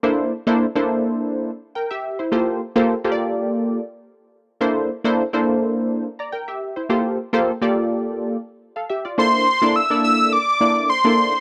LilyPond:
<<
  \new Staff \with { instrumentName = "Analog synth lead" } { \time 4/4 \key c \mixolydian \tempo 4 = 105 r1 | r1 | r1 | r1 |
c'''4 e'''8 e'''8 d'''4 c'''4 | }
  \new Staff \with { instrumentName = "Analog polysynth" } { \time 4/4 \key c \mixolydian << { r2. <bes' g''>16 <g' e''>8 <e' c''>16~ | <e' c''>16 r2. r8. | r2 r8. <d'' bes''>16 <bes' g''>16 <g' e''>8 <e' c''>16~ | <e' c''>16 r2. <a' f''>16 <g' e''>16 <f' d''>16~ |
<f' d''>16 r2. r8. | } \\ { <bes d' e' a' c''>8 r16 <bes d' e' a' c''>16 r16 <bes d' e' a' c''>4~ <bes d' e' a' c''>16 r4. | <bes f' g' a' c''>8 r16 <bes f' g' a' c''>16 r16 <bes f' g' a' c'' d''>4~ <bes f' g' a' c'' d''>16 r4. | <bes d' e' a' c''>8 r16 <bes d' e' a' c''>16 r16 <bes d' e' a' c''>4~ <bes d' e' a' c''>16 r4. | <bes f' g' a' c''>8 r16 <bes f' g' a' c''>16 r16 <bes f' g' a' d''>4~ <bes f' g' a' d''>16 r4. |
<bes d' e' a' c''>8 r16 <bes d' e' a' d''>16 r16 <bes d' e' a' d''>8. r8 <bes d' e' a' d''>8 r16 <bes d' e' a' d''>8 r16 | } >> }
>>